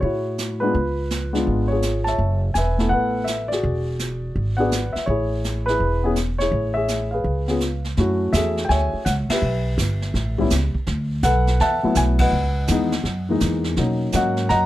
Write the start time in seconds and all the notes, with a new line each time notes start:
Already playing: G#4
0.00 A2 E4 F#4 C#5, brush sweep
0.38 snare, hi-hat pedal
0.60 G#3 B3 D4 F4 B4
0.75 C#2, brush sweep
1.10 snare, hi-hat pedal
1.33 G#3 B3 D4 F4, snare
1.47 G#1, brush sweep
1.68 G#4 C#5
1.72 F4
1.82 snare, hi-hat pedal
2.04 E5 A5, snare
2.08 C#5
2.18 F#1, brush sweep
2.54 E1 B4 E5 G#5, snare, hi-hat pedal
2.78 A3 B3 E4 A4, snare
2.89 A1 A4 F#5, brush sweep
2.93 B4
3.24 E5, snare, hi-hat pedal
3.48 F#4 D5, snare
3.52 G#4
3.63 E1, brush sweep
3.99 snare, hi-hat pedal
4.36 G#1, brush sweep
4.57 B3 D4 F#4 G#4 B4 D5 F#5
4.71 snare, hi-hat pedal
4.93 E5, muted upright bass stroke, snare
5.06 A1 E4 G#4 C#5, brush sweep
5.44 snare, hi-hat pedal
5.66 E4 G#4 B4, snare
5.80 E1, brush sweep
6.04 B3 C#4 E4 G#4
6.16 snare, hi-hat pedal
6.38 E4 G#4 C#5, snare
6.52 A1, brush sweep
6.74 G#4 C#5 E5
6.88 snare, hi-hat pedal
7.11 G#4 B4 F5
7.24 C#2, brush sweep
7.48 B3 C#4 F4 G#4, snare
7.60 snare, hi-hat pedal
7.84 snare
7.97 F#2 A3 C#4 E4 F#4, brush sweep, snare
8.33 E2 G#4 A4 E5, snare, hi-hat pedal
8.57 snare
8.65 G5
8.69 D2 C#5 E5 G#5, brush sweep, snare
8.93 muted upright bass stroke
9.05 C#2 F#5, snare, hi-hat pedal
9.29 G4 B4 E5, muted upright bass stroke, snare, ride
9.42 B1, brush sweep
9.78 G1, snare, hi-hat pedal
10.02 snare
10.14 A1, brush sweep, snare
10.38 G3 B3 C#4 E4, kick
10.50 C#2, snare, hi-hat pedal
10.74 muted upright bass stroke, kick
10.87 D2, brush sweep, snare
11.23 B1 A4 B4 F#5, snare, hi-hat pedal
11.47 snare
11.60 E2 E5 F#5 A5, brush sweep, snare
11.83 F#3 A3 B3 E4, muted upright bass stroke
11.95 B1 G#5, snare, hi-hat pedal
12.19 B4 D#5 F#5, kick, ride
12.32 C#2, brush sweep
12.67 D#2 E3 G#3 B3, snare, hi-hat pedal
12.71 D#4
12.92 snare
13.04 F#2, brush sweep, snare
13.29 E3 G#3 A#3 D#4
13.40 E2, snare, hi-hat pedal
13.64 snare
13.76 B2 F#3 A#3 C#4 D#4, brush sweep, snare
14.12 G#2 F#3 A#3 C#4 F#4 A#4 D#5 F#5, snare, hi-hat pedal
14.37 snare
14.49 F#2 D#5 F#5 A#5, brush sweep, snare